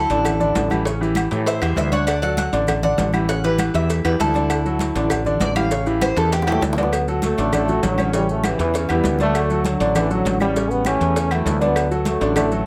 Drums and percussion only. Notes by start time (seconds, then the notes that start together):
0.10 cowbell, high conga, low agogo, maracas
0.25 cowbell, high conga, low conga, low agogo, claves, maracas
0.40 high conga, low conga, maracas
0.55 cowbell, high conga, low timbale, low agogo, maracas
0.70 high conga, low agogo, claves, maracas
0.85 cowbell, high conga, maracas
1.00 high conga, maracas
1.15 cowbell, high conga, low timbale, low agogo, claves, maracas
1.31 cowbell, maracas
1.46 cowbell, high conga, low agogo, maracas
1.61 cowbell, high conga, low agogo, claves, maracas
1.76 cowbell, high conga, low timbale, maracas
1.92 high conga, low agogo, maracas
2.07 cowbell, high conga, low agogo, claves, maracas
2.22 high conga, maracas
2.37 cowbell, high conga, low timbale, low agogo, maracas
2.52 cowbell, high conga, low agogo, maracas
2.67 cowbell, high conga, low conga, low agogo, claves, maracas
2.83 high conga, low conga, maracas
2.98 cowbell, high conga, low timbale, low agogo, maracas
3.13 high conga, low agogo, claves, maracas
3.29 cowbell, maracas
3.44 high conga, maracas
3.58 cowbell, high conga, low timbale, low agogo, claves, maracas
3.74 cowbell, maracas
3.89 cowbell, high conga, low agogo, maracas
4.04 cowbell, high conga, low agogo, claves, maracas
4.20 cowbell, high conga, low timbale, maracas
4.34 high conga, low agogo, maracas
4.49 cowbell, high conga, low agogo, claves, maracas
4.64 high conga, maracas
4.79 cowbell, high conga, low timbale, low agogo, maracas
4.94 cowbell, high conga, low agogo, maracas
5.10 cowbell, high conga, low conga, low agogo, claves, maracas
5.25 high conga, low conga, maracas
5.40 cowbell, high conga, low timbale, low agogo, maracas
5.55 high conga, low agogo, claves, maracas
5.71 cowbell, maracas
5.86 high conga, maracas
6.01 cowbell, high conga, high timbale, low agogo, claves, maracas
6.17 cowbell, high timbale, maracas
6.32 cowbell, high bongo, high conga, low timbale, low agogo, maracas
6.42 high bongo, high conga
6.47 cowbell, low timbale, low agogo, claves, maracas
6.52 low bongo
6.61 cowbell, low bongo, high conga, low timbale, maracas
6.73 low bongo, high conga
6.78 low timbale, low agogo, maracas
6.83 low bongo
6.92 cowbell, high conga, low agogo, claves, maracas
7.07 high conga, maracas
7.22 cowbell, high conga, low timbale, low agogo, maracas
7.38 cowbell, low agogo, maracas
7.52 cowbell, high conga, low conga, low agogo, claves, maracas
7.68 high conga, low conga, maracas
7.83 cowbell, high conga, low timbale, low agogo, maracas
7.98 high conga, low agogo, claves, maracas
8.13 cowbell, high conga, maracas
8.29 high conga, maracas
8.44 cowbell, high conga, low timbale, low agogo, claves, maracas
8.60 cowbell, maracas
8.74 cowbell, high conga, low agogo, maracas
8.89 cowbell, high conga, low agogo, claves, maracas
9.04 cowbell, high conga, low timbale, maracas
9.19 high conga, low agogo, maracas
9.35 cowbell, low agogo, claves, maracas
9.49 high conga, maracas
9.64 cowbell, high conga, low timbale, low agogo, maracas
9.80 cowbell, high conga, low agogo, maracas
9.95 cowbell, high conga, low conga, low agogo, claves, maracas
10.10 high conga, maracas
10.25 cowbell, high conga, low timbale, low agogo, maracas
10.40 high conga, low agogo, claves, maracas
10.55 cowbell, high conga, maracas
10.70 high conga, maracas
10.85 cowbell, high conga, low timbale, low agogo, claves, maracas
11.01 cowbell, maracas
11.16 cowbell, low agogo, maracas
11.31 cowbell, high conga, low agogo, claves, maracas
11.46 cowbell, high conga, low timbale, maracas
11.61 high conga, low agogo, maracas
11.76 cowbell, high conga, low agogo, claves, maracas
11.91 high conga, maracas
12.05 cowbell, high conga, low timbale, low agogo, maracas
12.21 cowbell, low agogo, maracas
12.36 cowbell, high conga, low conga, low agogo, claves, maracas
12.51 high conga, maracas